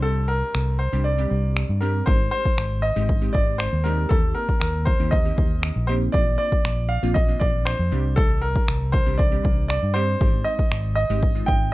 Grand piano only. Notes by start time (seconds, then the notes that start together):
0.02 A4
0.28 A#4
0.79 C5
1.04 D5
1.81 A#4
2.06 C5
2.31 C5
2.82 D#5
3.33 D5
3.58 C5
3.84 A#4
4.09 A4
4.35 A#4
4.60 A#4
4.85 C5
5.11 D#5
5.87 C5
6.12 D5
6.38 D5
6.89 F5
7.14 D#5
7.40 D5
7.65 C5
8.16 A4
8.42 A#4
8.92 C5
9.18 D5
9.68 D5
9.94 C5
10.44 D#5
10.96 D#5
11.46 G5